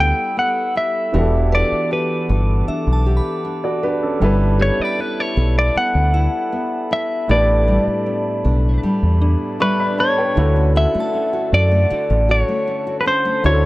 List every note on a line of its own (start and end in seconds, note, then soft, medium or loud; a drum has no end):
0.00 0.12 D2 medium
0.00 1.09 G3 medium
0.00 1.17 G3 medium
0.00 0.37 B3 medium
0.00 1.10 D4 medium
0.00 0.75 E4 medium
0.00 1.10 E4 medium
0.00 1.11 G4 medium
0.00 1.11 A4 medium
0.00 1.14 A4 medium
0.00 1.49 A4 medium
0.00 10.33 A4 medium
0.00 0.75 B4 medium
0.00 1.11 B4 medium
0.00 0.38 G5 loud
0.00 1.11 B5 medium
0.00 1.11 E6 medium
0.37 1.52 B3 medium
0.37 0.77 F#5 loud
0.76 1.55 E4 medium
0.76 1.56 E5 loud
1.13 1.62 E1 loud
1.13 3.02 E3 medium
1.13 4.64 E3 medium
1.13 3.02 B3 medium
1.13 3.02 D4 medium
1.13 3.03 F#4 medium
1.13 3.03 G4 medium
1.13 2.29 A4 medium
1.13 3.03 A4 medium
1.13 4.19 F#5 medium
1.13 10.33 A5 medium
1.13 4.19 D6 medium
1.52 2.67 D4 medium
1.52 3.82 B4 medium
1.52 1.92 D5 medium
1.72 muted fingered electric bass stroke soft
1.91 3.06 G4 medium
1.91 2.65 B4 medium
2.29 2.62 G1 medium
2.29 4.22 A4 medium
2.68 3.44 D4 medium
2.68 4.56 E5 medium
2.68 muted fingered electric bass stroke soft
2.87 3.19 B1 medium
2.93 4.78 A5 medium
3.06 3.83 G4 medium
3.17 4.84 B5 medium
3.45 4.60 D4 medium
3.64 3.82 F#4 medium
3.64 3.82 D5 medium
3.83 4.02 D4 medium
3.83 4.98 G4 medium
3.83 4.01 B4 medium
4.02 4.39 C#4 medium
4.02 4.21 A4 medium
4.20 4.70 G1 loud
4.20 7.24 G3 medium
4.20 7.32 G3 medium
4.20 7.25 D4 medium
4.20 7.25 E4 medium
4.20 5.37 A4 medium
4.20 7.26 A4 medium
4.20 7.26 B4 medium
4.20 7.26 E5 medium
4.20 10.33 B5 medium
4.59 5.75 B3 medium
4.59 6.90 G4 medium
4.59 4.82 C#5 medium
4.80 5.00 D5 loud
4.80 muted fingered electric bass stroke soft
4.85 7.12 B5 medium
4.99 6.14 E4 medium
4.99 5.20 B4 medium
5.20 5.58 C#5 medium
5.37 5.69 B1 medium
5.37 7.71 A4 medium
5.59 5.75 D5 medium
5.76 6.52 B3 medium
5.76 6.92 F#5 loud
5.76 muted fingered electric bass stroke soft
5.95 6.27 D2 medium
6.14 6.90 E4 medium
6.14 7.64 E5 medium
6.52 8.06 B3 medium
6.91 7.29 E4 medium
6.91 7.31 E5 loud
7.28 7.77 A1 loud
7.28 10.37 A2 medium
7.28 10.32 A3 medium
7.28 10.34 D4 medium
7.28 8.44 D4 medium
7.28 10.33 E4 medium
7.28 10.33 G4 medium
7.28 9.57 B4 medium
7.28 8.80 D5 medium
7.28 9.57 D5 medium
7.68 8.82 G3 medium
7.87 muted fingered electric bass stroke soft
8.06 9.20 B3 medium
8.45 8.77 B1 medium
8.45 10.37 D4 medium
8.83 9.59 G3 medium
8.83 muted fingered electric bass stroke soft
9.03 9.35 E2 medium
9.21 9.97 B3 medium
9.21 10.71 D4 medium
9.60 10.45 G3 medium
9.60 10.00 B4 medium
9.60 9.79 E5 medium
9.60 9.78 C#6 medium
9.80 9.98 D5 medium
9.80 9.98 B5 medium
9.98 10.45 B3 medium
9.98 10.17 C#5 medium
9.98 10.72 C#5 loud
9.98 10.17 A5 medium
10.18 10.55 B4 medium
10.18 10.54 G5 medium
10.35 10.85 D2 loud
10.35 13.40 D3 medium
10.35 11.90 D3 medium
10.35 13.40 D4 medium
10.35 13.41 E4 medium
10.35 10.75 F#4 medium
10.35 13.41 F#4 medium
10.35 13.65 A4 medium
10.35 13.65 F#5 medium
10.35 13.42 A5 medium
10.39 13.42 A4 medium
10.56 11.13 C#4 medium
10.75 11.33 F#4 medium
10.75 11.54 E5 loud
10.75 13.06 F#5 medium
10.94 11.70 A3 medium
10.94 muted fingered electric bass stroke soft
11.00 13.27 A5 medium
11.14 11.52 C#4 medium
11.33 11.91 F#4 medium
11.53 11.85 F#2 medium
11.53 12.31 D5 loud
11.71 12.47 A3 medium
11.90 13.44 D3 medium
11.90 12.29 F#4 medium
11.90 muted fingered electric bass stroke soft
12.10 12.42 A1 medium
12.10 12.66 C#4 medium
12.29 12.86 F#4 medium
12.29 12.96 C#5 loud
12.48 13.24 A3 medium
12.67 13.05 C#4 medium
12.87 13.44 F#4 medium
13.01 13.07 B4 medium
13.06 13.62 C#4 medium
13.06 13.45 C5 loud
13.25 13.65 A3 medium
13.43 13.65 D2 loud
13.43 13.65 D3 medium
13.43 13.65 D4 medium
13.43 13.65 E4 medium
13.43 13.65 F#4 medium
13.43 13.52 C5 medium
13.43 13.65 C#5 loud
13.43 13.65 A5 medium
13.53 13.65 A4 medium